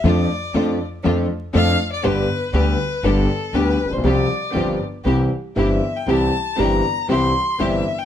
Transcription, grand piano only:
\new Staff \with { instrumentName = "Grand piano" } { \clef bass \time 4/4 \key c \mixolydian \tempo 4 = 119 <f, f a d' a'>8 r8 <f, f a d' a'>8 r8 <f, f a d' a'>8 r8 <f, f a d' a'>8 r8 | <g,, g, d g b g'>8 r8 <d, d g b g'>8 r8 <g,, g, d g b g'>8 r8 <d, d g b g'>8 r32 a,,32 bes,,32 b,,32 | <c, c f g c' g'>8 r8 <g,, g, f g c' g'>8 r8 <c, c e g c' g'>8 r8 <g,, g, e g c' g'>8 r8 | <c, c e g c' g'>8 r8 <g,, g, e g c' g'>8 r8 <c, c e g c' g'>8 r8 <g,, g, e g c' g'>8 r8 | }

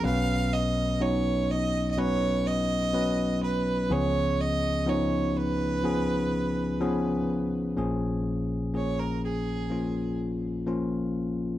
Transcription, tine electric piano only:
<<
  \new Staff \with { instrumentName = "Tine electric piano" } { \time 4/4 \key ais \phrygian \tempo 4 = 62 <fis b cis' b'>4 <fis b cis' dis'>4 <fis b cis' b'>4 <fis b cis' b'>4 | <eis b cis' gis'>4 <eis b cis' dis'>4 <eis b cis' gis'>4 <eis b cis' gis'>4 | <eis ais cis' gis'>4 <eis ais cis' gis'>4 <eis ais cis' eis'>4 <eis ais cis' eis'>4 | }
  \new Staff \with { instrumentName = "Tine electric piano" } { \clef bass \time 4/4 \key ais \phrygian <b,, b,>1 | <cis, cis>1 | <ais,, ais,>1 | }
>>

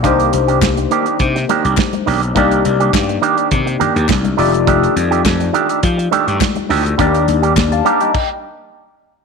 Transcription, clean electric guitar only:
\new Staff \with { instrumentName = "Clean electric guitar" } { \time 4/4 \key c \dorian \tempo 4 = 104 <ees bes d' g'>8 r16 <ees bes d' g'>16 r8 <ees bes d' g'>16 <ees bes d' g'>16 r8 <ees bes d' g'>16 <ees bes d' g'>16 r8 <ees bes d' g'>16 r16 | <ees bes d' g'>8 r16 <ees bes d' g'>16 r8 <ees bes d' g'>16 <ees bes d' g'>16 r8 <ees bes d' g'>16 <ees bes d' g'>16 r8 <ees a d' g'>16 r16 | <ees a d' g'>8 r16 <ees a d' g'>16 r8 <ees a d' g'>16 <ees a d' g'>16 r8 <ees a d' g'>16 <ees a d' g'>16 r8 <ees a d' g'>16 r16 | <g bes d' g'>8 r16 <g bes d' g'>16 r8 <g bes d' g'>16 <g bes d' g'>16 r2 | }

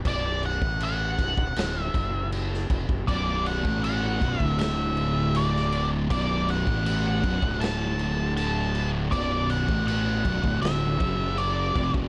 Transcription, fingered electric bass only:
\new Staff \with { instrumentName = "Fingered electric bass" } { \clef bass \time 4/4 \key b \minor \tempo 4 = 80 b,,,8. a,,8. b,,,16 d,,16 d,,8 fis,,4 eis,,16 fis,,16 | b,,,8. a,,8. b,,,16 d,,2~ d,,16 | b,,,8. a,,8. b,,,16 d,,2~ d,,16 | b,,,8. a,,8. b,,,16 d,,16 d,,8 fis,,4 eis,,16 fis,,16 | }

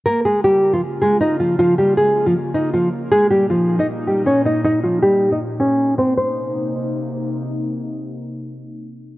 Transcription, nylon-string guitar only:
\new Staff \with { instrumentName = "Nylon-string guitar" } { \time 4/4 \key c \phrygian \tempo 4 = 157 <bes bes'>8 <aes aes'>8 <g g'>8. <f f'>16 r8 <aes aes'>8 <ees' ees''>8 <f f'>8 | <f f'>8 <g g'>8 <aes aes'>8. <f f'>16 r8 <ees' ees''>8 <f f'>8 r8 | <aes aes'>8 <g g'>8 <f f'>8. <ees' ees''>16 r8 <g g'>8 <des' des''>8 <ees' ees''>8 | <ees' ees''>8 <f f'>8 <g g'>8. <ees' ees''>16 r8 <des' des''>4 <c' c''>8 |
c''2. r4 | r1 | }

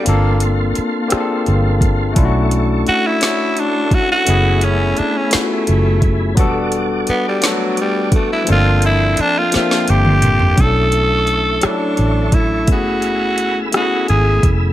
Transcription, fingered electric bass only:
\new Staff \with { instrumentName = "Fingered electric bass" } { \clef bass \time 6/8 \key b \minor \tempo 4. = 57 g,,4 r4 g,,4 | b,,4 r2 | fis,,4 r4 fis,,4 | e,,4 r2 |
g,,4 r4 g,,4 | b,,4. r8 a,,4 | fis,,2 gis,,8 eis,,8 | }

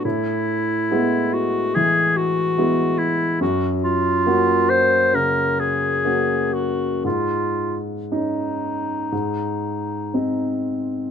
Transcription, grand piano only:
\new Staff \with { instrumentName = "Grand piano" } { \time 4/4 \key e \mixolydian \tempo 4 = 67 a,4 <gis b e'>4 e4 <gis b e'>4 | \key aes \mixolydian ges,4 <bes des' ges'>4 des4 <bes des' ges'>4 | aes,4 <des' ees'>4 aes,4 <c' ees'>4 | }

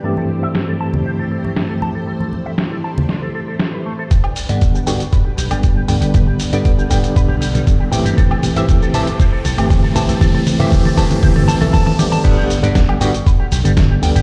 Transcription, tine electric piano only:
\new Staff \with { instrumentName = "Tine electric piano" } { \time 4/4 \key g \major \tempo 4 = 118 <g, e a c' g'>1~ | <g, e a c' g'>1 | r8. <d g b fis''>8. <d g b fis'>16 r4 <d g b>8. <d g b>8~ | <d g b>8. <d g b>8. <d g b>2 <e a c' g'>8~ |
<e a c' g'>8. <e a c' g'>8. <e a c' g'>16 r4 <e a c' g'>8. <e a c' g'>8~ | <e a c' g'>8. <e a c' g'>8. <e a c' g'>4~ <e a c' g'>16 <e a c' a'>8. <d g b g'>8 | <d g b fis''>8. <d g b fis''>8. <d g b fis'>16 r4 <d g b>8. <d g b>8 | }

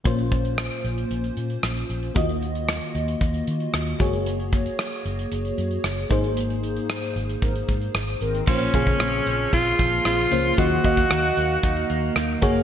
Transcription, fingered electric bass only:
\new Staff \with { instrumentName = "Fingered electric bass" } { \clef bass \time 4/4 \key bes \minor \tempo 4 = 114 bes,,4~ bes,,16 r16 bes,,8 bes,,8 bes,8 bes,,8 bes,,8 | ees,4~ ees,16 r16 ees,8 ees,8 ees8 ees,8 ges,,8~ | ges,,4~ ges,,16 r16 ges,,8 ges,,8 ges,8 ges,,8 aes,,8~ | aes,,4~ aes,,16 r16 aes,,8 aes,,8 aes,8 aes,,8 aes,,8 |
bes,,8 bes,,8 bes,,8 bes,,8 bes,,8 bes,,8 bes,,8 des,8 | ees,8 ees,8 ees,8 ees,8 ees,8 ees,8 ees,8 ges,,8 | }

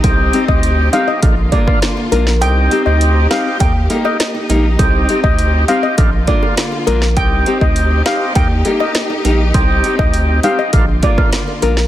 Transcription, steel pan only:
\new Staff \with { instrumentName = "Steel pan" } { \time 4/4 \key c \minor \tempo 4 = 101 r8. ees''16 r8 f''16 ees''16 r8 d''16 r8. bes'16 r16 | g''8 r16 ees''16 r8 f''16 r16 g''16 r8 ees''16 r4 | r8. ees''16 r8 f''16 ees''16 r8 d''16 r8. bes'16 r16 | g''8 r16 ees''16 r8 f''16 r16 g''16 r8 ees''16 r4 |
r8. ees''16 r8 f''16 ees''16 r8 d''16 r8. bes'16 r16 | }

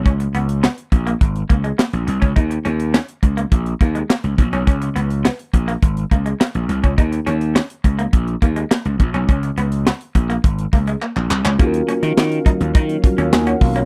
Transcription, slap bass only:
\new Staff \with { instrumentName = "Slap bass" } { \clef bass \time 4/4 \key ees \minor \tempo 4 = 104 cis,8 cis,8. r16 bes,,8 aes,,8 des,8 r16 bes,,16 c,16 des,16 | ees,8 ees,8. r16 des,8 bes,,8 ees,8 r16 des,16 bes,,16 ces,16 | cis,8 cis,8. r16 bes,,8 aes,,8 des,8 r16 bes,,16 c,16 des,16 | ees,8 ees,8. r16 des,8 bes,,8 ees,8 r16 des,16 bes,,16 ces,16 |
cis,8 cis,8. r16 bes,,8 aes,,8 des,8 r16 bes,,16 c,16 des,16 | ees,8 r16 ees16 ees8 r16 ees,16 ees8 r16 ees,16 ees,8 ces,8 | }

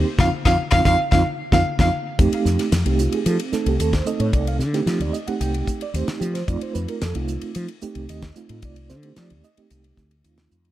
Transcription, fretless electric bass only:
\new Staff \with { instrumentName = "Fretless electric bass" } { \clef bass \time 4/4 \key f \mixolydian \tempo 4 = 112 r16 f,16 r16 f,16 r16 f,16 f,16 r16 f,16 r8 f,16 r16 f,16 r8 | f,16 r16 f,16 r16 f,16 c,8 r16 f16 r8 c,16 ees,8 r16 a,16 | c,8 d8 f16 ees,16 r8 c,8 r8 ees,16 r16 f8 | f,16 r16 f,16 r16 f,16 c,8 r16 f16 r8 c,16 ees,8 r16 a,16 |
c,8 d8 f16 ees,16 r8 c,8 d,8 ees,8 f,8 | }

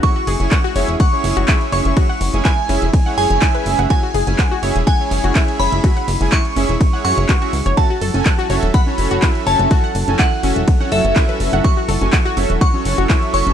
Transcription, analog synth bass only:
\new Staff \with { instrumentName = "Analog synth bass" } { \clef bass \time 4/4 \key fis \minor \tempo 4 = 124 r8 fis,,16 fis,,16 r8 fis,,16 e,,16 r8 fis,,16 fis,,16 r8 fis,,16 fis,,16 | r8 fis,,16 fis,,16 r8 fis,,16 e,,16 r8 fis,,16 fis,,16 r8 fis,,16 fis,,16 | r8 fis,,16 fis,,16 r8 fis,,16 e,,16 r8 fis,,16 fis,,16 r8 fis,,16 fis,,16 | r8 fis,,16 fis,,16 r8 fis,,16 e,,16 r8 fis,16 fis,,16 r8 cis,16 fis,,16 |
r8 fis,,16 fis,,16 r8 fis,,16 e,,16 r8 fis,,16 fis,,16 r8 fis,,16 fis,,16 | r8 fis,,16 fis,,16 r8 fis,,16 e,,16 r8 fis,,16 fis,,16 r8 fis,,16 fis,,16 | r8 fis,,16 fis,,16 r8 fis,,16 e,,16 r8 fis,,16 fis,,16 r8 fis,,16 fis,,16 | }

